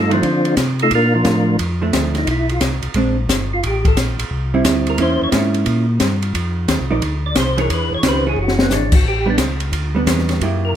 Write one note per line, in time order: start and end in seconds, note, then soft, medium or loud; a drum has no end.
0.00 0.22 G2 medium
0.00 0.12 A3 medium
0.00 0.12 D#4 medium
0.00 0.12 F4 medium
0.00 0.12 A4 medium
0.10 0.22 D#3 medium
0.10 0.55 F3 medium
0.10 0.22 A3 medium
0.10 0.55 C4 medium
0.10 0.22 D4 medium
0.10 0.55 D4 soft
0.10 0.55 F4 medium
0.10 ride soft
0.23 0.56 D3 medium
0.23 kick soft
0.23 ride medium
0.45 ride soft
0.57 0.90 C3 medium
0.57 kick soft
0.57 snare medium
0.57 hi-hat pedal medium
0.57 ride medium
0.79 0.93 A3 medium
0.79 0.93 D#4 medium
0.79 0.93 F4 medium
0.79 0.92 A4 medium
0.79 ride soft
0.91 1.24 A#2 medium
0.91 1.14 A#4 loud
0.91 kick soft
0.91 ride medium
0.95 1.14 A#3 medium
0.95 1.14 D4 medium
0.95 1.14 F4 medium
1.15 1.57 F3 medium
1.15 1.57 D4 medium
1.15 1.57 F4 medium
1.15 1.57 A#4 medium
1.25 1.58 A2 medium
1.25 kick soft
1.25 snare medium
1.25 hi-hat pedal soft
1.25 ride medium
1.59 1.92 F2 medium
1.59 kick soft
1.59 ride medium
1.82 2.25 F3 medium
1.82 2.25 A3 medium
1.82 2.25 D4 medium
1.93 2.26 D2 loud
1.93 kick soft
1.93 snare medium
1.93 hi-hat pedal medium
1.93 ride medium
2.15 2.28 D#4 medium
2.15 snare soft
2.15 ride soft
2.27 2.60 B1 medium
2.27 2.50 E4 medium
2.27 kick soft
2.27 ride medium
2.49 2.62 F4 medium
2.49 ride soft
2.61 2.81 C2 medium
2.61 kick soft
2.61 snare medium
2.61 hi-hat pedal medium
2.61 ride medium
2.82 2.89 C2 soft
2.82 ride soft
2.94 3.28 A#1 medium
2.94 3.15 G#3 medium
2.94 3.15 C4 medium
2.94 3.16 D4 medium
2.94 kick soft
2.94 ride medium
3.29 3.62 G1 medium
3.29 kick soft
3.29 snare medium
3.29 hi-hat pedal medium
3.29 ride medium
3.53 3.64 F4 medium
3.63 3.96 A1 medium
3.63 3.86 G4 medium
3.63 kick soft
3.63 ride medium
3.85 3.98 A4 medium
3.85 kick medium
3.85 ride soft
3.97 4.17 A#1 medium
3.97 kick soft
3.97 snare medium
3.97 hi-hat pedal medium
3.97 ride medium
4.19 4.25 A#1 soft
4.19 ride medium
4.31 4.64 C2 medium
4.31 kick soft
4.54 4.97 G3 medium
4.54 4.97 C4 medium
4.54 4.97 E4 medium
4.65 4.98 D2 medium
4.65 kick soft
4.65 snare medium
4.65 hi-hat pedal medium
4.65 ride medium
4.87 5.00 A#4 loud
4.87 ride soft
4.98 5.19 E2 medium
4.98 5.31 A#3 medium
4.98 5.32 C#4 medium
4.98 5.32 E4 medium
4.98 kick soft
4.98 ride medium
5.02 5.22 C5 medium
5.22 5.27 E2 soft
5.22 5.30 C#5 medium
5.32 5.65 G#2 medium
5.32 5.84 A#3 medium
5.32 5.84 C#4 medium
5.32 5.85 E4 medium
5.32 kick soft
5.32 snare medium
5.32 hi-hat pedal soft
5.32 ride medium
5.54 ride medium
5.66 5.99 A#2 medium
5.66 kick soft
5.66 ride medium
6.00 6.33 G2 medium
6.00 kick soft
6.00 snare medium
6.00 hi-hat pedal medium
6.00 ride medium
6.22 ride soft
6.34 6.67 F2 medium
6.34 kick soft
6.34 ride medium
6.68 6.79 D#2 medium
6.68 kick soft
6.68 snare medium
6.68 hi-hat pedal medium
6.68 ride medium
6.80 6.91 C2 medium
6.90 7.01 A#1 medium
6.90 7.01 F3 medium
6.90 7.01 D#4 medium
6.90 7.02 A#4 medium
6.90 7.02 D5 medium
7.02 7.35 D2 medium
7.02 kick soft
7.02 ride medium
7.26 7.37 D5 loud
7.36 7.69 C2 medium
7.36 kick soft
7.36 snare medium
7.36 hi-hat pedal medium
7.36 ride medium
7.40 7.59 C5 medium
7.57 8.01 E3 medium
7.57 8.02 D4 medium
7.57 8.02 G#4 medium
7.57 7.71 A#4 loud
7.57 8.02 C#5 medium
7.57 ride soft
7.70 7.90 E2 medium
7.70 7.93 B4 medium
7.70 kick soft
7.70 ride medium
7.91 7.97 E2 soft
7.91 8.05 C#5 loud
8.03 8.36 C#2 medium
8.03 8.23 D#3 medium
8.03 8.23 C#4 medium
8.03 8.24 G4 medium
8.03 8.24 C5 medium
8.03 kick soft
8.03 snare medium
8.03 hi-hat pedal medium
8.03 ride medium
8.08 8.27 B4 medium
8.26 8.55 E3 medium
8.26 8.55 D4 medium
8.26 8.56 G#4 medium
8.26 8.39 G#4 medium
8.26 8.56 C#5 medium
8.36 8.70 F#1 medium
8.42 8.61 F#4 medium
8.48 snare medium
8.59 8.73 B3 medium
8.59 snare medium
8.70 9.04 G#1 medium
8.70 8.91 E3 medium
8.70 8.91 D4 medium
8.70 8.92 G#4 medium
8.70 8.92 C#5 medium
8.70 snare medium
8.70 hi-hat pedal medium
8.74 8.94 D4 medium
8.92 9.06 F#4 medium
8.92 kick medium
8.92 crash medium
9.04 9.38 A1 medium
9.04 9.28 G4 medium
9.04 kick soft
9.26 9.37 G3 medium
9.26 9.38 B3 medium
9.26 9.38 D4 medium
9.30 9.37 D4 medium
9.38 9.72 C#2 medium
9.38 kick soft
9.38 snare medium
9.38 hi-hat pedal medium
9.38 ride medium
9.60 ride soft
9.72 10.06 D2 medium
9.72 kick soft
9.72 ride medium
9.95 10.38 G3 medium
9.95 10.39 B3 medium
9.95 10.39 D4 medium
10.06 10.40 E2 medium
10.06 kick soft
10.06 snare medium
10.06 hi-hat pedal medium
10.06 ride medium
10.19 snare soft
10.29 snare soft
10.29 ride soft
10.41 10.74 F#2 medium
10.41 10.74 F#3 medium
10.41 10.74 A#3 soft
10.41 10.75 E4 medium
10.41 10.75 G4 medium
10.41 kick soft
10.41 ride medium
10.65 10.76 A#4 medium